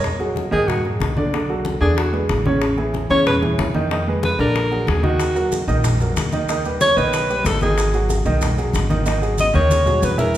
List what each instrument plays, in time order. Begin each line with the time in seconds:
0.04 high bongo, high conga
0.20 grand piano F#3 F#4 G#4, high bongo, high conga
0.36 high bongo, high conga
0.51 upright bass G#2, grand piano D#3 D#4 D#5, alto saxophone G#4, high bongo, high conga
0.68 alto saxophone F#4, high bongo, high conga, low conga
0.84 grand piano F#3 F#4 G#4, high bongo, high conga
1.00 upright bass B1, high bongo, low bongo, high conga
1.17 grand piano D3 D4 D5, high conga
1.33 grand piano D3 D4 D5, high bongo, high conga
1.49 grand piano F#3 F#4 A4, high conga
1.65 high bongo, high conga
1.81 upright bass E2, grand piano D3 D4 D5, alto saxophone G#4, high bongo
1.97 alto saxophone F#4, high bongo, high conga
2.13 grand piano G#3 G#4 B4, high bongo, high conga
2.29 upright bass A1, high bongo, low bongo, high conga
2.45 grand piano C#3 C#4 C#5, high bongo, high conga
2.62 high bongo, high conga
2.78 grand piano E3 E4 G#4, high bongo, high conga
2.94 high bongo, high conga
3.10 upright bass E2, grand piano C#3 C#4 C#5, alto saxophone C#5, high bongo, high conga
3.26 alto saxophone B4, high bongo, high conga, low conga
3.42 grand piano E3 E4 G#4, high bongo, high conga, low conga
3.58 upright bass F2, high bongo, low bongo, high conga
3.74 grand piano D#3 D#4 D#5, high conga
3.91 grand piano D#3 D#4 D#5, high bongo, high conga
4.07 grand piano G#3 G#4 B4, high conga
4.23 alto saxophone B4, high bongo, high conga
4.39 upright bass A#1, grand piano D3 D4 D5, alto saxophone A#4, high bongo
4.55 high bongo, high conga
4.71 grand piano F#3 F#4 G#4, high bongo, high conga
4.87 upright bass D#2, alto saxophone G#4, high bongo, low bongo, high conga
5.03 grand piano D#3 D#4 D#5, alto saxophone F#4, high bongo, high conga
5.20 high bongo, high conga, maracas
5.35 grand piano F#3 F#4 A#4, high bongo, high conga, maracas
5.52 high bongo, high conga, maracas
5.67 upright bass A#1, grand piano D#3 D#4 D#5, high bongo, maracas
5.84 high bongo, high conga, low conga, maracas
6.00 grand piano F#3 F#4 A#4, high bongo, high conga, low conga, maracas
6.16 upright bass D#2, high bongo, low bongo, high conga, maracas
6.32 grand piano D#3 D#4 D#5, high conga, maracas
6.49 grand piano D#3 D#4 D#5, high bongo, high conga, maracas
6.65 grand piano G3 G4 B4, high conga, maracas
6.81 alto saxophone C#5, high bongo, high conga, maracas
6.97 upright bass B1, grand piano D#3 D#4 D#5, alto saxophone B4, high bongo, maracas
7.13 high bongo, high conga, maracas
7.29 grand piano G3 G4 B4, high bongo, high conga, maracas
7.45 upright bass G#1, alto saxophone A4, high bongo, low bongo, high conga, maracas
7.61 grand piano D#3 D#4 D#5, alto saxophone G#4, high bongo, high conga, maracas
7.77 high bongo, high conga, maracas
7.93 grand piano F#3 F#4 G#4, high bongo, high conga, maracas
8.09 high bongo, high conga, maracas
8.25 upright bass B1, grand piano D#3 D#4 D#5, high bongo, high conga, maracas
8.41 high bongo, high conga, low conga, maracas
8.57 grand piano F#3 F#4 G#4, high bongo, high conga, maracas
8.73 upright bass G#1, high bongo, low bongo, high conga, maracas
8.90 grand piano D#3 D#4 D#5, high conga, maracas
9.06 grand piano D#3 D#4 D#5, high bongo, high conga, maracas
9.21 grand piano F#3 F#4 G#4, high conga, maracas
9.38 alto saxophone D#5, high bongo, high conga, maracas
9.54 upright bass D#2, grand piano D#3 D#4 D#5, alto saxophone C#5, high conga, maracas
9.70 high bongo, high conga, maracas
9.86 grand piano F#3 F#4 G#4, low bongo, low conga, maracas
10.02 upright bass E2, alto saxophone B4, low bongo, low conga, maracas
10.18 grand piano E3 E4 E5, alto saxophone A#4, low bongo, low conga, maracas
10.34 high conga